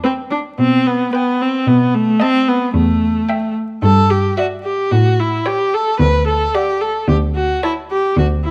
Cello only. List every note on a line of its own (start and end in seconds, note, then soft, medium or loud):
0.59 1.02 B2 medium
1.67 2.10 B2 medium
2.74 3.17 E2 medium
3.82 4.26 G2 medium
4.92 5.35 A2 medium
6.00 6.43 D2 medium
7.08 7.52 D2 medium
8.17 8.51 D2 soft